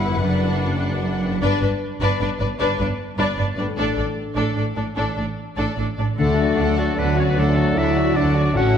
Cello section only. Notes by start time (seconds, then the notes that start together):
Already playing: G2
0.24 F#2
1.43 G2
1.62 G2
2.02 G2
2.21 G2
2.40 G2
2.60 G2
2.79 G2
3.18 G2
3.38 G2
3.57 G2
3.77 A2
3.97 A2
4.36 A2
4.56 A2
4.77 A2
4.97 A2
5.17 A2
5.58 A2
5.78 A2
5.98 A2
6.19 D3
6.58 D3
6.98 D3
7.38 D3
7.77 D3
8.16 D3
8.55 A2